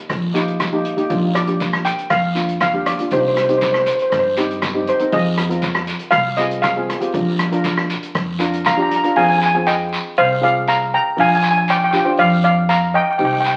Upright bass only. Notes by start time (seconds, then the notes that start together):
0.10 A#1
1.10 A#1
2.11 F2
3.12 C2
4.12 G2
5.12 F2
6.13 C2
7.14 A#1
8.15 F2
9.17 F2
10.18 C2
11.18 A#1
12.19 F2
13.20 C2